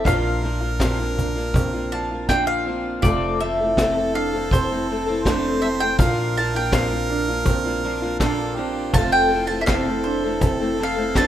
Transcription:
0.04 upright bass A#1, steel-string acoustic guitar A#2 F3 A#3 D4 F4, felt piano F4, harmonica A#4, mandolin F5, kick, cajon bass, cajon slap
0.43 steel-string acoustic guitar F3 A#3 D4 F4, cajon slap
0.61 steel-string acoustic guitar A#3 D4 F4
0.80 steel-string acoustic guitar A#2 F3 A#3 D4 F4, felt piano C4, kick, snare, cajon slap
0.99 steel-string acoustic guitar A#3 D4 F4
1.18 felt piano D4, cajon bass
1.35 steel-string acoustic guitar A#3 D4 F4, cajon slap
1.54 felt piano C4, kick, cajon bass
1.73 steel-string acoustic guitar A#3 D4 F4
1.92 steel-string acoustic guitar F3 A#3 D4 F4, mandolin A5, cajon slap
2.11 steel-string acoustic guitar A#3 D4 F4
2.29 steel-string acoustic guitar A#2 F3 A#3 D4 F4, felt piano D4, mandolin G5, kick, snare, cajon slap
2.47 mandolin F5
2.66 steel-string acoustic guitar F3 A#3 D4 F4, felt piano C4
3.02 upright bass F1, steel-string acoustic guitar F2 C3 A3 C4 A4, felt piano F4, harmonica A4, mandolin D5, kick, cajon bass
3.40 steel-string acoustic guitar E3 A3 C4 A4, mandolin E5, cajon slap
3.60 steel-string acoustic guitar E3 A3 C4 A4
3.77 steel-string acoustic guitar F2 C3 E3 A3 C4 A4, felt piano C4, kick, snare, cajon slap
3.96 steel-string acoustic guitar E3 A3 C4 A4
4.14 felt piano D4, mandolin F5, cajon slap
4.33 steel-string acoustic guitar E3 A3 C4 A4, cajon slap
4.51 felt piano C4, mandolin C5, kick, cajon bass
4.71 steel-string acoustic guitar E3 A3 C4 A4
4.89 steel-string acoustic guitar E3 A3 C4 A4
5.06 steel-string acoustic guitar E3 A3 C4 A4
5.24 steel-string acoustic guitar F2 C3 E3 A3 C4 A4, felt piano D4, harmonica C5, kick, snare, cajon slap
5.45 cajon slap
5.62 steel-string acoustic guitar E3 A3 C4 A4, felt piano C4, mandolin E5, cajon slap
5.80 steel-string acoustic guitar E3 A3 C4 A4, mandolin G5
5.98 upright bass A#1, steel-string acoustic guitar A#2 F3 A#3 D4 F4, felt piano F4, harmonica A#4, mandolin F5, kick, cajon bass
6.37 steel-string acoustic guitar F3 A#3 D4 F4, mandolin A5, cajon slap
6.55 steel-string acoustic guitar A#3 D4 F4, mandolin G5
6.72 steel-string acoustic guitar A#2 F3 A#3 D4 F4, felt piano C4, mandolin F5, kick, snare, cajon slap
6.91 steel-string acoustic guitar A#3 D4 F4
7.10 felt piano D4, cajon slap
7.28 steel-string acoustic guitar A#3 D4 F4, cajon slap
7.46 felt piano C4, cajon bass, kick
7.65 steel-string acoustic guitar A#3 D4 F4
7.84 steel-string acoustic guitar F3 A#3 D4 F4, cajon slap
8.02 steel-string acoustic guitar A#3 D4 F4
8.19 steel-string acoustic guitar A#2 F3 A#3 D4 F4, felt piano D4, harmonica A4, kick, snare, cajon slap
8.39 cajon slap
8.56 steel-string acoustic guitar F3 A#3 D4 F4, felt piano C4, harmonica G4, cajon slap
8.93 upright bass F1, steel-string acoustic guitar F2 C3 A3 C4, harmonica F4, felt piano F4, mandolin A5, cajon bass, kick
8.97 steel-string acoustic guitar A4
9.12 mandolin G5
9.31 steel-string acoustic guitar E3 A3 C4 A4, cajon slap
9.47 steel-string acoustic guitar E3 A3 C4 A4, mandolin A5
9.61 harmonica A4, mandolin E5
9.66 steel-string acoustic guitar F2 C3 E3 A3 C4 A4, felt piano C4, mandolin F5, kick, cajon slap, snare
9.87 steel-string acoustic guitar E3 A3 C4 A4
10.04 felt piano D4, mandolin C5, cajon slap
10.24 steel-string acoustic guitar E3 A3 C4 A4, cajon slap
10.41 felt piano C4, cajon bass, kick
10.59 steel-string acoustic guitar E3 A3 C4 A4
10.78 steel-string acoustic guitar E3 A3 C4 A4, cajon slap
10.83 mandolin F5
10.96 steel-string acoustic guitar E3 A3 C4 A4
11.14 steel-string acoustic guitar F2 C3 E3 A3 C4 A4, felt piano D4, mandolin A5, kick, snare, cajon slap

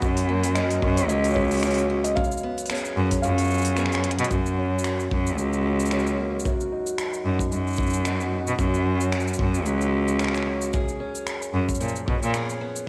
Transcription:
Already playing: steel-string acoustic guitar F#4
0.02 steel-string acoustic guitar F#2, cello F#2, kick, shaker
0.17 open hi-hat, shaker
0.29 steel-string acoustic guitar A#3
0.44 open hi-hat, shaker
0.55 steel-string acoustic guitar A#3 C#4 F#4, felt piano D#5, finger snap, shaker
0.71 open hi-hat, shaker
0.82 cello F#2, kick
0.96 felt piano C#5, open hi-hat, shaker
1.08 cello C#2, steel-string acoustic guitar F#3, felt piano D#5, shaker
1.24 open hi-hat, shaker
1.28 shaker
1.30 shaker
1.35 felt piano C#5, kick
1.40 shaker
1.44 shaker
1.48 open hi-hat, shaker
1.51 open hi-hat, shaker
1.57 open hi-hat
1.60 finger snap, open hi-hat
1.63 steel-string acoustic guitar A#3 C#4 F#4, open hi-hat, shaker
1.67 open hi-hat
1.71 open hi-hat
1.74 open hi-hat
1.78 open hi-hat, shaker
1.90 steel-string acoustic guitar F#4
2.04 felt piano D#5, open hi-hat, shaker
2.15 steel-string acoustic guitar F#2, felt piano F5, kick, shaker
2.24 shaker
2.31 shaker
2.37 shaker
2.43 steel-string acoustic guitar B3
2.58 open hi-hat, shaker
2.66 open hi-hat
2.70 steel-string acoustic guitar B3 C#4 G#4, finger snap, shaker
2.75 open hi-hat
2.77 open hi-hat
2.85 shaker
2.97 cello F#2
3.11 kick, open hi-hat, shaker
3.22 cello F#2, steel-string acoustic guitar F3, felt piano F5, shaker
3.38 open hi-hat, shaker
3.41 shaker
3.44 shaker
3.47 shaker
3.50 shaker
3.54 shaker
3.58 shaker
3.61 open hi-hat, shaker
3.65 shaker
3.77 steel-string acoustic guitar B3 C#4 G#4, finger snap, shaker
3.86 finger snap
3.92 finger snap, open hi-hat, shaker
4.04 steel-string acoustic guitar G#4, closed hi-hat
4.11 closed hi-hat
4.19 cello B2, closed hi-hat
4.24 closed hi-hat
4.31 cello F#2, steel-string acoustic guitar F#2 F#4, kick, shaker
4.46 shaker
4.58 steel-string acoustic guitar C#4
4.79 shaker
4.84 finger snap
5.00 shaker
5.11 cello F#2, kick
5.27 shaker
5.37 cello C#2, steel-string acoustic guitar F#3, shaker
5.53 shaker
5.80 shaker
5.85 shaker
5.91 steel-string acoustic guitar A#3 C#4 F#4, finger snap
5.99 shaker
6.07 shaker
6.18 steel-string acoustic guitar A#3
6.39 shaker
6.45 steel-string acoustic guitar F#2 F#4, kick
6.60 shaker
6.72 steel-string acoustic guitar D#4
6.87 shaker
6.98 finger snap, shaker
7.13 shaker
7.25 cello F#2
7.39 kick, shaker
7.52 cello F#2, steel-string acoustic guitar G#3, shaker
7.67 shaker
7.70 shaker
7.73 shaker
7.76 kick, shaker
7.83 shaker
7.86 shaker
7.90 shaker
7.93 shaker
8.05 steel-string acoustic guitar B3 D#4 F#4, finger snap, shaker
8.21 shaker
8.32 steel-string acoustic guitar B3
8.47 cello B2, shaker
8.59 steel-string acoustic guitar F#2 F#4, cello F#2, kick, shaker
8.74 shaker
8.86 steel-string acoustic guitar C#4
9.01 shaker
9.13 finger snap, shaker
9.20 shaker
9.28 shaker
9.34 shaker
9.39 cello F#2, kick
9.54 shaker
9.66 cello C#2, steel-string acoustic guitar F#3, shaker
9.81 shaker
10.08 shaker
10.19 steel-string acoustic guitar A#3 C#4 F#4, finger snap, shaker
10.24 finger snap
10.29 finger snap
10.35 finger snap, shaker
10.38 finger snap
10.43 steel-string acoustic guitar A#3, finger snap
10.62 shaker
10.73 steel-string acoustic guitar F#2 G#4, kick, shaker
10.88 shaker
11.00 steel-string acoustic guitar C#4
11.15 shaker
11.27 finger snap, shaker
11.42 shaker
11.54 cello F#2
11.69 kick, shaker
11.75 shaker
11.81 cello A#2, steel-string acoustic guitar F3, shaker
11.88 shaker
11.96 shaker
12.08 cello B2, kick
12.22 cello A#2, shaker
12.34 steel-string acoustic guitar B3 C#4 G#4, finger snap, shaker
12.49 shaker
12.61 steel-string acoustic guitar B3
12.76 shaker

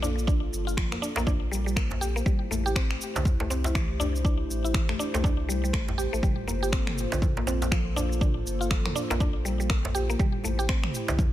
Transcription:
Already playing: sub bass A#1, analog synth pad A#3 F4 A4 C5
0.02 synth arpeggio sound D4, djembe tone, shaker
0.19 shaker
0.27 synth arpeggio sound D4, kick, shaker
0.53 sub bass G1, shaker
0.67 synth arpeggio sound F4, shaker
0.77 synth arpeggio sound F3, finger snap, kick, shaker
0.92 synth arpeggio sound A#3, finger snap, djembe tone
1.02 synth arpeggio sound D4, shaker
1.16 sub bass A#1, synth arpeggio sound A#3, djembe slap, shaker
1.27 synth arpeggio sound D4, kick, djembe tone, shaker
1.51 synth arpeggio sound G3, shaker
1.66 synth arpeggio sound G3, shaker
1.76 synth arpeggio sound A#3, finger snap, kick, shaker
1.91 djembe slap, djembe tone
2.01 synth arpeggio sound G4, shaker
2.16 synth arpeggio sound A#3, shaker
2.25 synth arpeggio sound G3, analog synth pad A3 E4 G4, kick, shaker
2.51 sub bass A1, synth arpeggio sound A3, djembe tone, shaker
2.66 synth arpeggio sound G4, shaker
2.76 synth arpeggio sound C4, finger snap, kick, shaker
2.91 finger snap
3.01 shaker
3.15 sub bass C2, synth arpeggio sound D3, djembe slap, shaker
3.25 kick, djembe tone, shaker
3.40 synth arpeggio sound A3, djembe slap
3.50 synth arpeggio sound C4, djembe slap, shaker
3.64 synth arpeggio sound E4, djembe slap, shaker
3.75 synth arpeggio sound E3, finger snap, kick, shaker
4.00 synth arpeggio sound D4, djembe tone, shaker
4.16 shaker
4.25 synth arpeggio sound D4, kick, shaker
4.50 sub bass A1, shaker
4.64 synth arpeggio sound E4, shaker
4.74 synth arpeggio sound E3, finger snap, kick, shaker
4.89 synth arpeggio sound A3, finger snap, djembe tone
4.99 synth arpeggio sound D4, shaker
5.14 sub bass C2, synth arpeggio sound A3, djembe slap, shaker
5.24 synth arpeggio sound D4, kick, djembe tone, shaker
5.49 synth arpeggio sound G3, shaker
5.64 synth arpeggio sound G3, shaker
5.73 sub bass A1, synth arpeggio sound A3, finger snap, kick, shaker
5.88 djembe slap, djembe tone
5.98 synth arpeggio sound G4, shaker
6.13 sub bass A1, synth arpeggio sound A3, shaker
6.23 sub bass G1, synth arpeggio sound G3, analog synth pad A#3 F4 A4, kick, mid tom, shaker
6.48 synth arpeggio sound A#3, djembe tone, shaker
6.63 synth arpeggio sound G4, shaker
6.72 synth arpeggio sound C4, finger snap, kick, shaker
6.87 finger snap, mid tom
6.98 shaker
7.12 sub bass A#1, synth arpeggio sound D3, djembe slap, shaker
7.22 kick, mid tom, djembe tone, shaker
7.37 synth arpeggio sound A#3, djembe slap
7.47 synth arpeggio sound C4, djembe slap, shaker
7.62 synth arpeggio sound F4, djembe slap, shaker
7.72 synth arpeggio sound F3, finger snap, kick, shaker
7.96 synth arpeggio sound D4, djembe tone, shaker
8.12 shaker
8.21 synth arpeggio sound D4, kick, mid tom, shaker
8.46 sub bass G1, shaker
8.61 synth arpeggio sound F4, shaker
8.71 synth arpeggio sound F3, finger snap, kick, shaker
8.86 synth arpeggio sound A#3, finger snap, mid tom, djembe tone
8.96 synth arpeggio sound D4, shaker
9.10 sub bass A#1, synth arpeggio sound A#3, djembe slap, shaker
9.20 synth arpeggio sound D4, kick, djembe tone, shaker
9.45 synth arpeggio sound G3, shaker
9.60 synth arpeggio sound G3, shaker
9.70 synth arpeggio sound A#3, finger snap, kick, shaker
9.85 djembe slap, djembe tone
9.95 synth arpeggio sound G4, shaker
10.10 synth arpeggio sound A#3, shaker
10.19 synth arpeggio sound G3, analog synth pad A3 E4 G4 C5, kick, mid tom, shaker
10.44 sub bass A1, synth arpeggio sound A3, djembe tone, shaker
10.59 synth arpeggio sound G4, shaker
10.69 synth arpeggio sound C4, finger snap, kick, shaker
10.84 finger snap, mid tom
10.94 shaker
11.08 sub bass C2, synth arpeggio sound D3, djembe slap, shaker
11.19 kick, mid tom, djembe tone, shaker

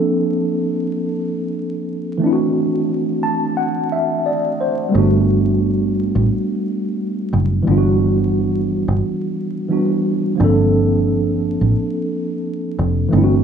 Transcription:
Already playing: tine electric piano F3 A#3 C4 D4 A4
2.18 tine electric piano E3 A3
2.22 tine electric piano C4 D4
2.26 tine electric piano E4
2.33 tine electric piano F#4
3.23 tine electric piano A5
3.57 tine electric piano F#5
3.92 tine electric piano E5
4.26 tine electric piano D5
4.60 tine electric piano C5
4.89 tine electric piano G3 A3
4.93 fingered electric bass G1, tine electric piano B3 D4
4.98 tine electric piano F#4
6.15 fingered electric bass A1
7.33 fingered electric bass F#1
7.63 tine electric piano E3 G3
7.67 fingered electric bass G1, tine electric piano B3 D4
7.71 tine electric piano F4
7.78 tine electric piano F#4
8.88 fingered electric bass G1
9.68 tine electric piano E3 G3 B3 D4
9.72 tine electric piano F#4
10.35 tine electric piano F3 A#3
10.40 fingered electric bass G1, tine electric piano C4 D4
10.44 tine electric piano A4
11.61 fingered electric bass A1
12.79 fingered electric bass F1
13.09 tine electric piano E3 A3
13.13 fingered electric bass G1, tine electric piano C4 D4
13.17 tine electric piano E4
13.24 tine electric piano F#4

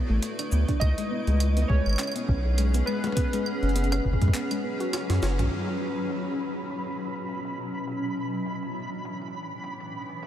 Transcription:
Already playing: ambient pad A3 E4 B4 D5
0.10 analog synth bass A1, synth arpeggio sound A3
0.22 closed hi-hat
0.39 synth arpeggio sound D4, closed hi-hat, claves
0.52 analog synth bass D2, synth arpeggio sound B3, shaker
0.68 synth arpeggio sound D4, kick, closed hi-hat
0.80 analog synth bass C#2, ambient pad C#4, synth keys D#5, kick, closed hi-hat, claves
0.96 synth arpeggio sound G#3, ambient pad G#4, closed hi-hat
1.11 synth arpeggio sound B3
1.21 ambient pad F#5
1.27 analog synth bass C#2, synth arpeggio sound G#3, closed hi-hat
1.40 closed hi-hat, claves
1.57 synth arpeggio sound B3, closed hi-hat
1.62 synth keys D#5
1.66 analog synth bass C#2, synth arpeggio sound G#3, synth keys C#5, ambient pad D#5, kick
1.86 analog synth bass G#1, claves
1.89 claves
1.93 claves
1.96 clap, closed hi-hat, claves
1.99 synth arpeggio sound C#4, claves
2.03 claves
2.07 claves
2.12 claves
2.16 synth arpeggio sound B3, closed hi-hat
2.28 analog synth bass B1, synth arpeggio sound C#4, kick
2.58 synth arpeggio sound G#3, closed hi-hat, claves
2.74 synth arpeggio sound B3, closed hi-hat, shaker
2.86 ambient pad F#3, synth arpeggio sound G#3, synth keys B4, claves
3.04 closed hi-hat, high tom
3.07 high tom
3.12 synth keys B4, high tom
3.17 synth arpeggio sound B3, kick, closed hi-hat
3.33 synth arpeggio sound G#3, closed hi-hat
3.46 ambient pad B4, claves
3.63 analog synth bass F#1, synth arpeggio sound C#4, closed hi-hat
3.69 closed hi-hat
3.76 synth arpeggio sound B3, closed hi-hat
3.84 closed hi-hat
3.92 synth arpeggio sound C#4, closed hi-hat, high tom, claves
4.05 analog synth bass F#1, kick
4.13 kick
4.21 analog synth bass F#2, synth arpeggio sound G#3, kick, closed hi-hat
4.28 kick
4.34 synth arpeggio sound B3, clap, closed hi-hat
4.51 synth arpeggio sound G#3, closed hi-hat, claves
4.64 synth arpeggio sound B3
4.80 synth arpeggio sound F#4, closed hi-hat
4.93 synth arpeggio sound C#4, snare, closed hi-hat, claves
5.10 analog synth bass F#2, snare, closed hi-hat
5.23 analog synth bass F#1, synth arpeggio sound C#4, snare, shaker
5.39 analog synth bass B1, synth arpeggio sound G#4, closed hi-hat, mid tom
5.52 ambient pad B2, synth texture B5, closed hi-hat
5.69 closed hi-hat, claves
5.98 closed hi-hat
6.11 closed hi-hat, claves
6.27 closed hi-hat
6.59 ambient pad E4
6.70 closed hi-hat, claves
6.86 closed hi-hat
7.16 claves
7.29 closed hi-hat
7.45 closed hi-hat, shaker
7.74 closed hi-hat, claves
7.87 ambient pad A2, closed hi-hat
7.97 ambient pad E3
8.04 closed hi-hat
8.17 ambient pad D4, claves
8.33 closed hi-hat
8.46 closed hi-hat
8.63 closed hi-hat
8.72 ambient pad B3, claves
8.85 claves
8.95 claves
9.05 closed hi-hat
9.22 closed hi-hat, claves
9.28 closed hi-hat
9.34 closed hi-hat
9.43 closed hi-hat
9.64 closed hi-hat
9.80 closed hi-hat, claves
9.93 shaker
10.10 closed hi-hat
10.23 ambient pad C#3, closed hi-hat, claves

